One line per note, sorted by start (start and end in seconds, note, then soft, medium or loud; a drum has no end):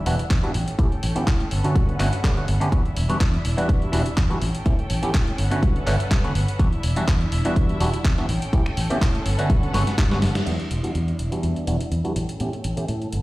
0.00 0.53 D4 medium
0.00 0.53 E4 medium
0.00 0.53 E5 medium
0.06 0.15 E1 medium
0.06 0.15 E3 loud
0.06 0.15 G3 medium
0.06 0.15 B3 medium
0.06 0.15 D4 medium
0.06 0.15 F#4 loud
0.06 open hi-hat loud
0.19 muted fingered electric bass stroke soft
0.19 closed hi-hat soft
0.30 0.39 E2 medium
0.30 kick loud
0.30 clap loud
0.30 closed hi-hat medium
0.43 0.51 E3 loud
0.43 0.51 G3 medium
0.43 0.51 B3 medium
0.43 0.51 D4 medium
0.43 0.51 F#4 loud
0.43 closed hi-hat soft
0.54 0.63 A1 medium
0.54 2.70 C#4 medium
0.54 2.70 A4 medium
0.54 1.50 G5 medium
0.54 open hi-hat medium
0.68 closed hi-hat medium
0.79 0.87 A2 loud
0.79 0.88 E3 medium
0.79 0.88 A3 medium
0.79 0.88 B3 medium
0.79 0.88 C#4 medium
0.79 0.88 G4 medium
0.79 kick loud
0.79 closed hi-hat medium
0.92 closed hi-hat soft
1.03 1.12 A1 medium
1.03 open hi-hat loud
1.15 1.23 E3 medium
1.15 1.23 A3 medium
1.15 1.23 B3 medium
1.15 1.24 C#4 medium
1.15 1.24 G4 medium
1.15 muted fingered electric bass stroke soft
1.15 closed hi-hat medium
1.27 1.44 A2 medium
1.27 kick loud
1.27 clap loud
1.27 closed hi-hat soft
1.40 closed hi-hat soft
1.51 1.60 G1 medium
1.51 2.71 B4 medium
1.51 2.71 F#5 medium
1.51 open hi-hat medium
1.64 1.97 D3 medium
1.64 1.97 A3 medium
1.64 1.97 B3 medium
1.64 1.97 C#4 medium
1.64 1.97 F#4 loud
1.64 closed hi-hat soft
1.76 1.84 G2 medium
1.76 kick loud
1.76 closed hi-hat soft
1.89 closed hi-hat soft
1.99 2.09 G1 medium
1.99 2.08 D3 medium
1.99 2.08 A3 medium
1.99 2.09 B3 medium
1.99 2.09 C#4 medium
1.99 2.09 F#4 loud
1.99 clap medium
1.99 open hi-hat loud
2.13 closed hi-hat soft
2.24 2.33 G2 medium
2.24 2.35 D3 medium
2.24 2.35 A3 medium
2.24 2.35 B3 medium
2.24 2.35 C#4 medium
2.24 2.35 G4 medium
2.24 kick loud
2.24 clap loud
2.24 closed hi-hat soft
2.37 2.44 D3 medium
2.37 2.44 A3 medium
2.37 2.45 B3 medium
2.37 2.45 C#4 medium
2.37 2.45 F#4 medium
2.37 closed hi-hat soft
2.48 2.57 G1 medium
2.48 open hi-hat medium
2.60 2.68 D3 medium
2.60 2.69 A3 medium
2.60 2.69 B3 medium
2.60 2.69 C#4 medium
2.60 2.69 G4 loud
2.60 closed hi-hat soft
2.72 2.81 E2 medium
2.72 2.81 G3 medium
2.72 2.81 B3 medium
2.72 4.40 D4 medium
2.72 2.81 D4 medium
2.72 4.40 E4 medium
2.72 2.81 F#4 loud
2.72 4.40 E5 medium
2.72 kick loud
2.72 closed hi-hat soft
2.85 closed hi-hat soft
2.97 3.05 E1 medium
2.97 open hi-hat loud
3.09 3.17 E3 medium
3.09 3.17 G3 medium
3.09 3.17 B3 medium
3.09 3.17 D4 medium
3.09 3.17 F#4 medium
3.09 muted fingered electric bass stroke soft
3.09 closed hi-hat soft
3.21 3.37 E2 loud
3.21 kick loud
3.21 clap loud
3.21 closed hi-hat soft
3.34 closed hi-hat soft
3.45 3.53 E1 medium
3.45 open hi-hat loud
3.57 3.90 E3 medium
3.57 3.90 G3 medium
3.57 3.90 B3 medium
3.57 3.90 D4 medium
3.57 3.91 F#4 loud
3.57 closed hi-hat soft
3.69 3.78 E2 medium
3.69 kick loud
3.69 closed hi-hat medium
3.82 closed hi-hat soft
3.92 4.02 E1 medium
3.92 4.02 E3 loud
3.92 4.02 G3 medium
3.92 4.02 B3 medium
3.92 4.02 D4 medium
3.92 4.02 F#4 loud
3.92 open hi-hat loud
4.06 muted fingered electric bass stroke soft
4.06 closed hi-hat soft
4.17 4.26 E2 medium
4.17 kick loud
4.17 clap loud
4.17 closed hi-hat soft
4.30 4.38 E3 medium
4.30 4.38 G3 medium
4.30 4.38 B3 medium
4.30 4.38 D4 medium
4.30 4.38 F#4 loud
4.30 closed hi-hat soft
4.42 4.50 A1 medium
4.42 6.57 C#4 medium
4.42 5.37 A4 medium
4.42 5.38 G5 medium
4.42 open hi-hat medium
4.55 closed hi-hat medium
4.66 4.74 A2 medium
4.66 4.75 E3 medium
4.66 4.75 A3 medium
4.66 4.75 B3 medium
4.66 4.75 C#4 medium
4.66 4.75 G4 loud
4.66 kick loud
4.66 closed hi-hat medium
4.79 closed hi-hat soft
4.90 4.99 A1 medium
4.90 open hi-hat loud
5.02 5.10 E3 medium
5.02 5.10 A3 medium
5.02 5.11 B3 medium
5.02 5.11 C#4 medium
5.02 5.11 G4 loud
5.02 muted fingered electric bass stroke soft
5.02 closed hi-hat soft
5.14 5.31 A2 medium
5.14 kick loud
5.14 clap loud
5.14 closed hi-hat medium
5.27 closed hi-hat soft
5.38 5.47 G1 medium
5.38 6.58 A4 medium
5.38 6.58 B4 medium
5.38 6.58 F#5 medium
5.38 open hi-hat medium
5.51 5.84 D3 medium
5.51 5.84 A3 medium
5.51 5.84 B3 medium
5.51 5.84 C#4 medium
5.51 5.84 F#4 medium
5.51 closed hi-hat medium
5.63 5.71 G2 medium
5.63 kick loud
5.63 closed hi-hat medium
5.76 closed hi-hat soft
5.86 5.95 G1 medium
5.86 5.95 D3 loud
5.86 5.96 A3 medium
5.86 5.96 B3 medium
5.86 5.96 C#4 medium
5.86 5.96 F#4 loud
5.86 clap medium
5.86 open hi-hat loud
6.00 muted fingered electric bass stroke soft
6.00 closed hi-hat soft
6.11 6.20 G2 medium
6.11 kick loud
6.11 clap loud
6.11 closed hi-hat soft
6.23 6.31 D3 medium
6.23 6.31 A3 medium
6.23 6.32 B3 medium
6.23 6.32 C#4 medium
6.23 6.32 F#4 loud
6.23 closed hi-hat soft
6.35 6.44 G1 medium
6.35 open hi-hat medium
6.48 closed hi-hat medium
6.59 6.68 E2 loud
6.59 6.68 E3 medium
6.59 6.68 G3 medium
6.59 6.68 B3 medium
6.59 8.27 D4 medium
6.59 6.68 D4 medium
6.59 8.27 E4 medium
6.59 6.69 F#4 loud
6.59 8.27 E5 medium
6.59 kick loud
6.59 closed hi-hat medium
6.72 closed hi-hat soft
6.83 6.92 E1 medium
6.83 open hi-hat loud
6.96 7.04 E3 medium
6.96 7.04 G3 medium
6.96 7.04 B3 medium
6.96 7.04 D4 medium
6.96 7.04 F#4 loud
6.96 muted fingered electric bass stroke soft
6.96 closed hi-hat medium
7.08 7.24 E2 medium
7.08 kick loud
7.08 clap loud
7.08 closed hi-hat medium
7.21 closed hi-hat soft
7.32 7.41 E1 medium
7.32 open hi-hat medium
7.45 7.78 E3 medium
7.45 7.78 G3 medium
7.45 7.78 B3 medium
7.45 7.78 D4 medium
7.45 7.78 F#4 medium
7.45 closed hi-hat medium
7.56 7.65 E2 medium
7.56 kick loud
7.56 closed hi-hat medium
7.69 closed hi-hat soft
7.80 7.89 E1 medium
7.80 7.89 E3 loud
7.80 7.89 G3 medium
7.80 7.89 B3 medium
7.80 7.89 D4 medium
7.80 7.89 F#4 loud
7.80 open hi-hat loud
7.93 muted fingered electric bass stroke soft
7.93 closed hi-hat soft
8.05 8.13 E2 medium
8.05 kick loud
8.05 clap loud
8.05 closed hi-hat medium
8.18 8.25 E3 medium
8.18 8.25 G3 medium
8.18 8.26 B3 medium
8.18 8.26 D4 medium
8.18 8.26 F#4 loud
8.18 closed hi-hat soft
8.28 8.37 A1 medium
8.28 10.44 C#4 medium
8.28 10.44 A4 medium
8.28 9.24 G5 medium
8.28 open hi-hat medium
8.42 closed hi-hat medium
8.53 8.62 A2 medium
8.53 8.62 E3 medium
8.53 8.62 A3 medium
8.53 8.62 B3 medium
8.53 8.62 C#4 medium
8.53 8.62 G4 loud
8.53 kick loud
8.53 closed hi-hat medium
8.66 finger snap medium
8.66 closed hi-hat soft
8.77 8.86 A1 medium
8.77 open hi-hat loud
8.90 8.98 E3 medium
8.90 8.98 A3 medium
8.90 8.98 B3 medium
8.90 8.98 C#4 medium
8.90 8.98 G4 loud
8.90 muted fingered electric bass stroke soft
8.90 closed hi-hat medium
9.01 9.18 A2 loud
9.01 kick loud
9.01 clap loud
9.01 closed hi-hat medium
9.15 closed hi-hat soft
9.25 9.34 G1 medium
9.25 10.45 B4 medium
9.25 10.45 F#5 medium
9.25 open hi-hat medium
9.38 9.71 D3 medium
9.38 9.71 A3 medium
9.38 9.71 B3 medium
9.38 9.72 C#4 medium
9.38 9.72 F#4 loud
9.38 closed hi-hat medium
9.50 9.58 G2 medium
9.50 kick loud
9.50 closed hi-hat medium
9.63 closed hi-hat soft
9.73 9.83 G1 loud
9.73 9.83 D3 loud
9.73 9.83 A3 medium
9.73 9.83 B3 medium
9.73 9.83 C#4 medium
9.73 9.83 F#4 loud
9.73 snare medium
9.73 open hi-hat loud
9.87 muted fingered electric bass stroke soft
9.87 snare medium
9.87 closed hi-hat medium
9.98 10.24 G2 loud
9.98 kick loud
9.98 snare medium
9.98 clap loud
9.98 closed hi-hat medium
10.11 10.19 D3 loud
10.11 10.19 A3 medium
10.11 10.19 B3 medium
10.11 10.19 C#4 medium
10.11 10.19 F#4 loud
10.11 snare medium
10.11 closed hi-hat soft
10.22 10.31 G1 medium
10.22 snare medium
10.22 open hi-hat medium
10.35 snare medium
10.35 closed hi-hat medium
10.46 10.55 E2 medium
10.46 10.55 E3 medium
10.46 10.55 G3 medium
10.46 10.55 B3 medium
10.46 10.55 D4 medium
10.46 12.14 D4 medium
10.46 12.14 E4 medium
10.46 10.55 F#4 medium
10.46 12.14 E5 medium
10.46 closed hi-hat medium
10.46 crash medium
10.60 closed hi-hat soft
10.71 10.79 E1 medium
10.71 closed hi-hat medium
10.83 10.91 E3 medium
10.83 10.91 G3 medium
10.83 10.91 B3 medium
10.83 10.91 D4 medium
10.83 10.91 F#4 medium
10.83 closed hi-hat soft
10.95 11.11 E2 medium
10.95 closed hi-hat medium
11.08 closed hi-hat soft
11.19 11.28 E1 medium
11.19 closed hi-hat medium
11.31 11.65 E3 medium
11.31 11.65 G3 medium
11.31 11.65 B3 medium
11.31 11.65 D4 medium
11.31 11.65 F#4 medium
11.31 closed hi-hat soft
11.43 11.52 E2 medium
11.43 closed hi-hat medium
11.56 closed hi-hat soft
11.67 11.76 E1 medium
11.67 11.76 E3 medium
11.67 11.76 G3 medium
11.67 11.76 B3 medium
11.67 11.77 D4 medium
11.67 11.77 F#4 loud
11.67 closed hi-hat medium
11.80 muted fingered electric bass stroke soft
11.80 closed hi-hat soft
11.91 12.00 E2 medium
11.91 closed hi-hat medium
12.04 12.12 E3 medium
12.04 12.12 G3 medium
12.04 12.12 B3 medium
12.04 12.12 D4 medium
12.04 12.12 F#4 medium
12.04 closed hi-hat soft
12.16 12.25 A1 medium
12.16 13.12 C#4 medium
12.16 13.22 A4 medium
12.16 13.12 G5 medium
12.16 closed hi-hat medium
12.29 closed hi-hat soft
12.40 12.49 A2 medium
12.40 12.49 E3 medium
12.40 12.49 A3 medium
12.40 12.49 B3 medium
12.40 12.49 C#4 medium
12.40 12.49 G4 medium
12.40 closed hi-hat medium
12.53 closed hi-hat soft
12.64 12.73 A1 medium
12.64 closed hi-hat medium
12.77 12.85 E3 medium
12.77 12.85 A3 medium
12.77 12.85 B3 medium
12.77 12.85 C#4 medium
12.77 12.85 G4 medium
12.77 muted fingered electric bass stroke soft
12.77 closed hi-hat soft
12.88 13.05 A2 medium
12.88 closed hi-hat soft
13.02 closed hi-hat soft
13.12 13.21 G1 medium
13.12 13.22 C#4 medium
13.12 13.22 B4 medium
13.12 13.22 F#5 medium
13.12 closed hi-hat medium